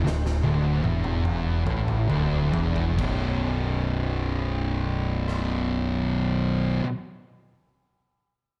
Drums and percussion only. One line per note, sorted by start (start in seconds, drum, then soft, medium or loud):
0.07 snare medium
0.26 snare medium
0.44 high tom medium
0.84 high tom medium
1.04 mid tom medium
1.25 mid tom medium
1.67 mid tom medium
1.88 mid tom medium
2.10 mid tom medium
2.54 floor tom loud
2.76 floor tom medium
2.99 kick loud
2.99 crash medium
5.28 cross-stick medium